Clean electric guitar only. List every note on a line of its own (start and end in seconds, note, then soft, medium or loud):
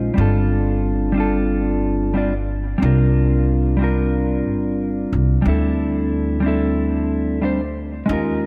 0.00 0.12 G#3 medium
0.00 0.13 C#4 medium
0.00 0.14 D#4 medium
0.00 0.15 F4 medium
0.00 0.16 C5 loud
0.14 1.11 G3 medium
0.14 1.12 C4 medium
0.14 1.13 D4 medium
0.19 1.14 F4 medium
0.19 1.15 A4 medium
1.12 2.10 G3 medium
1.12 2.11 C4 medium
1.12 2.12 D4 medium
1.18 2.12 F4 medium
1.18 2.14 A4 loud
2.14 2.32 G3 medium
2.14 2.32 C4 medium
2.14 2.33 D4 medium
2.14 2.33 F4 medium
2.14 2.33 D5 medium
2.78 3.75 G3 medium
2.78 3.76 C4 medium
2.78 3.77 D4 medium
2.84 3.78 F4 medium
2.84 3.79 A#4 medium
3.77 5.40 G3 medium
3.77 5.41 C4 medium
3.77 5.42 D4 medium
3.82 5.43 F4 medium
3.82 5.43 A#4 loud
5.42 6.39 G3 medium
5.42 6.40 C4 medium
5.42 6.41 D4 medium
5.48 6.42 E4 medium
5.48 6.42 A4 loud
6.40 7.38 G3 medium
6.40 7.39 C4 medium
6.44 7.40 D4 medium
6.44 7.40 E4 medium
6.44 7.41 A4 loud
7.42 7.59 G3 medium
7.42 7.59 C4 medium
7.42 7.60 D4 medium
7.42 7.61 C5 medium
8.06 8.46 G#3 medium
8.06 8.46 C#4 medium
8.06 8.46 D#4 medium
8.11 8.46 F4 medium
8.11 8.46 A#4 medium